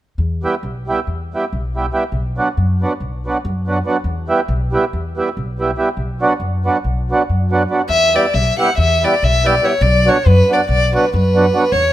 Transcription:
0.18 upright bass E2
0.43 accordion G3 B3 E4 G4
0.63 upright bass B1
0.88 accordion G3 B3 E4 G4
1.07 upright bass E2
1.34 accordion G3 B3 E4 G4
1.53 upright bass B1
1.75 accordion G3 B3 E4 G4
1.93 accordion G3 B3 E4 G4
2.12 upright bass B1
2.37 accordion F#3 B3 D4 F#4
2.57 upright bass F#2
2.81 accordion F#3 B3 D4 F#4
3.00 upright bass B1
3.26 accordion F#3 B3 D4 F#4
3.45 upright bass F#2
3.67 accordion F#3 B3 D4 F#4
3.85 accordion F#3 B3 D4 F#4
4.04 upright bass E2
4.28 accordion G3 B3 E4 G4
4.48 upright bass B1
4.72 accordion G3 B3 E4 G4
4.93 upright bass E2
5.17 accordion G3 B3 E4 G4
5.37 upright bass B1
5.59 accordion G3 B3 E4 G4
5.77 accordion G3 B3 E4 G4
5.97 upright bass B1
6.21 accordion F#3 B3 D4 F#4
6.40 upright bass F#2
6.65 accordion F#3 B3 D4 F#4
6.84 upright bass B1
7.10 accordion F#3 B3 D4 F#4
7.29 upright bass F#2
7.51 accordion F#3 B3 D4 F#4
7.70 accordion F#3 B3 D4 F#4
7.89 upright bass E2, violin E5
8.14 accordion G3 B3 E4 G4, violin D5
8.34 upright bass B1, violin E5
8.58 accordion G3 B3 E4 G4, violin F#5
8.78 upright bass E2, violin E5
9.03 accordion G3 B3 E4 G4, violin D5
9.22 upright bass B1, violin E5
9.43 accordion G3 B3 E4 G4, violin D5
9.62 accordion G3 B3 E4 G4, violin C#5
9.81 upright bass B1, violin D5
10.05 accordion F#3 B3 D4 F#4, violin C#5
10.26 upright bass F#2, violin B4
10.49 accordion F#3 B3 D4 F#4
10.53 violin D5
10.69 upright bass B1, violin D5
10.93 accordion F#3 B3 D4 F#4, violin B4
11.14 upright bass F#2, violin B4
11.34 accordion F#3 B3 D4 F#4
11.54 accordion F#3 B3 D4 F#4
11.72 upright bass E2, violin C#5

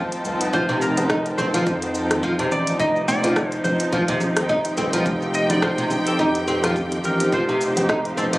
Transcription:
Already playing: string section F3 C4 D#4 G5 A5, electric slide guitar C5
0.12 closed hi-hat, shaker
0.25 analog synth bass C2, tabla tin, tabla ge, shaker
0.41 closed hi-hat, tabla na, shaker
0.53 analog synth bass F1, oud F3, electric slide guitar C5, kick, shaker
0.69 oud C3, tabla tin, shaker
0.82 electric slide guitar A#4, shaker
0.97 closed hi-hat, tabla na, tabla tin, low conga, shaker
1.10 oud D#4, kick, cross-stick, shaker
1.26 closed hi-hat, tabla na, shaker
1.38 analog synth bass F1, oud C4, electric slide guitar C5, tabla tin, low conga, shaker
1.54 oud F3, closed hi-hat, tabla tin, shaker
1.67 analog synth bass F2, kick, shaker
1.82 closed hi-hat, tabla na, shaker
1.95 shaker
2.11 cross-stick, closed hi-hat, tabla na, tabla ge, shaker
2.23 oud F3, kick, shaker
2.39 oud C3, closed hi-hat, tabla na, tabla ge, shaker
2.51 analog synth bass A1, electric slide guitar D5, shaker
2.67 closed hi-hat, shaker
2.79 analog synth bass F1, string section F3, oud D#4, electric slide guitar D#5, kick, shaker
2.96 tabla tin, shaker
3.08 oud C4, electric slide guitar D5, shaker
3.22 oud F3, string section C4, closed hi-hat, tabla na, tabla tin, low conga, shaker
3.36 kick, cross-stick, shaker
3.49 electric slide guitar C5, closed hi-hat, tabla na, shaker
3.64 analog synth bass F1, electric slide guitar C5, tabla tin, low conga, shaker
3.80 closed hi-hat, tabla tin, shaker
3.93 analog synth bass F1, oud F3, kick, shaker
4.08 oud C3, closed hi-hat, tabla ge, shaker
4.20 string section G4, low conga, shaker
4.37 string section G5, cross-stick, closed hi-hat, tabla ge, shaker
4.49 oud D#4, kick, shaker
4.65 closed hi-hat, shaker
4.77 analog synth bass C2, oud C4, tabla tin, tabla ge, shaker
4.93 oud F3, closed hi-hat, tabla na, shaker
5.06 analog synth bass F1, kick, shaker
5.22 tabla tin, shaker
5.34 electric slide guitar D#5, shaker
5.49 electric slide guitar D5, closed hi-hat, tabla na, tabla tin, low conga, shaker
5.62 oud F3, electric slide guitar C5, kick, cross-stick, shaker
5.78 oud C3, closed hi-hat, tabla na, shaker
5.90 analog synth bass F1, tabla tin, low conga, shaker
6.06 electric slide guitar A4, closed hi-hat, tabla tin, shaker
6.19 analog synth bass F2, oud D#4, electric slide guitar G4, kick, shaker
6.35 closed hi-hat, tabla na, shaker
6.48 oud C4, shaker
6.63 oud F3, cross-stick, closed hi-hat, tabla na, tabla ge, shaker
6.76 kick, shaker
6.91 closed hi-hat, tabla na, tabla ge, shaker
7.04 analog synth bass A1, electric slide guitar A#4, shaker
7.20 closed hi-hat, shaker
7.33 analog synth bass F1, oud F3, electric slide guitar C5, kick, shaker
7.48 oud C3, tabla tin, shaker
7.61 shaker
7.77 closed hi-hat, tabla na, tabla tin, low conga, shaker
7.89 oud D#4, kick, cross-stick, shaker
8.05 string section F5, closed hi-hat, tabla na, shaker
8.17 analog synth bass F1, oud C4, electric slide guitar A4, tabla tin, low conga, shaker
8.33 oud F3, closed hi-hat, tabla tin, shaker

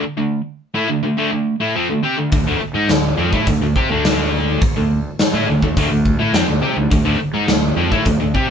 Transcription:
0.04 muted distorted electric guitar stroke
0.17 distorted electric guitar D3 A3
0.74 distorted electric guitar A3 E4
0.89 distorted electric guitar D3 A3
1.03 distorted electric guitar D3 A3
1.18 distorted electric guitar D3 A3
1.32 distorted electric guitar D3 A3
1.60 distorted electric guitar A3 E4
1.75 distorted electric guitar F3 C4
1.90 distorted electric guitar D3 A3
2.03 distorted electric guitar C4 G4
2.17 distorted electric guitar D3 A3
2.32 fingered electric bass D2, distorted electric guitar D3 A3, kick, open hi-hat
2.46 fingered electric bass D2, distorted electric guitar D3 A3
2.60 muted fingered electric bass stroke, muted distorted electric guitar stroke
2.74 fingered electric bass G#2, distorted electric guitar G#3 D#4
2.88 fingered electric bass D2, distorted electric guitar D3 A3, snare, open hi-hat
3.17 fingered electric bass F2, distorted electric guitar F3 C4
3.33 fingered electric bass A2, distorted electric guitar A3 E4, kick
3.46 fingered electric bass D2, distorted electric guitar D3 A3, kick, open hi-hat
3.61 fingered electric bass D2, distorted electric guitar D3 A3
3.76 fingered electric bass C3, distorted electric guitar C4 G4, kick
3.89 fingered electric bass D2, distorted electric guitar D3 A3 D4
4.05 snare, open hi-hat
4.62 muted fingered electric bass stroke, muted distorted electric guitar stroke, kick, open hi-hat
4.76 fingered electric bass D2, distorted electric guitar D3 A3
5.19 snare, open hi-hat
5.33 fingered electric bass A2, distorted electric guitar A3 E4
5.48 fingered electric bass D2, distorted electric guitar D3 A3
5.62 fingered electric bass D2, distorted electric guitar D3 A3, kick
5.77 fingered electric bass D2, distorted electric guitar D3 A3, kick, open hi-hat
5.90 fingered electric bass D2, distorted electric guitar D3 A3
6.06 kick
6.19 fingered electric bass A2, distorted electric guitar A3 E4
6.33 fingered electric bass F2, distorted electric guitar F3 C4, snare, open hi-hat
6.48 fingered electric bass D2, distorted electric guitar D3 A3
6.62 fingered electric bass C3, distorted electric guitar C4 G4
6.77 fingered electric bass D2, distorted electric guitar D3 A3
6.91 fingered electric bass D2, distorted electric guitar D3 A3, kick, open hi-hat
7.05 fingered electric bass D2, distorted electric guitar D3 A3
7.19 muted fingered electric bass stroke, muted distorted electric guitar stroke
7.34 fingered electric bass G#2, distorted electric guitar G#3 D#4
7.47 fingered electric bass D2, distorted electric guitar D3 A3, snare, open hi-hat
7.76 fingered electric bass F2, distorted electric guitar F3 C4
7.91 fingered electric bass A2, distorted electric guitar A3 E4, kick
8.05 fingered electric bass D2, distorted electric guitar D3 A3, kick, open hi-hat
8.19 fingered electric bass D2, distorted electric guitar D3 A3
8.34 fingered electric bass C3, distorted electric guitar C4 G4, kick

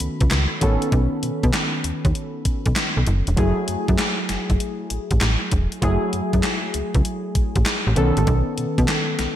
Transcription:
Already playing: synth keys D#3 A3 B3 C#4 F#4 A4 B5
0.00 fm bass C#2, closed hi-hat
0.20 fm bass C#2, kick, closed hi-hat
0.31 fm bass C#2, snare, clap, closed hi-hat
0.61 fm bass A1, synth keys D#3 B3 C#4 A4, kick, closed hi-hat
0.82 closed hi-hat
0.92 fm bass B1, kick, closed hi-hat
1.23 fm bass B2, closed hi-hat
1.43 fm bass B2, kick, closed hi-hat
1.53 snare, clap, closed hi-hat
1.84 fm bass D#2, closed hi-hat
2.05 fm bass D#2, kick, closed hi-hat
2.15 closed hi-hat
2.45 fm bass B1, kick, closed hi-hat
2.66 fm bass B1, kick, closed hi-hat
2.76 snare, clap, closed hi-hat
2.97 fm bass B1
3.07 fm bass F#1, closed hi-hat
3.27 fm bass E1, closed hi-hat
3.37 fm bass F#1, synth keys F#3 A3 E4 G#4, kick, closed hi-hat
3.68 fm bass F#2, closed hi-hat
3.88 fm bass F#2, kick, closed hi-hat
3.98 snare, clap, closed hi-hat
4.29 fm bass F#1, snare, closed hi-hat
4.50 fm bass F#1, kick, closed hi-hat
4.60 closed hi-hat
4.90 fm bass A1, closed hi-hat
5.11 fm bass A1, kick, closed hi-hat
5.21 fm bass A1, snare, clap, closed hi-hat
5.51 fm bass E1, kick, closed hi-hat
5.72 closed hi-hat
5.82 fm bass F#1, synth keys F#3 A3 E4 G#4, kick, closed hi-hat
6.13 fm bass F#2, closed hi-hat
6.33 fm bass F#2, kick, closed hi-hat
6.43 snare, clap, closed hi-hat
6.74 fm bass C#2, closed hi-hat
6.94 fm bass C#2, kick, closed hi-hat
7.05 closed hi-hat
7.35 fm bass A1, kick, closed hi-hat
7.56 fm bass A1, kick, closed hi-hat
7.66 snare, clap, closed hi-hat
7.87 fm bass A1
7.96 fm bass B1, synth keys D#3 B3 C#4 A4, closed hi-hat
8.17 fm bass A1, closed hi-hat
8.27 fm bass B1, kick, closed hi-hat
8.58 fm bass B2, closed hi-hat
8.78 fm bass B2, kick, closed hi-hat
8.88 snare, clap, closed hi-hat
9.19 fm bass B1, snare, closed hi-hat

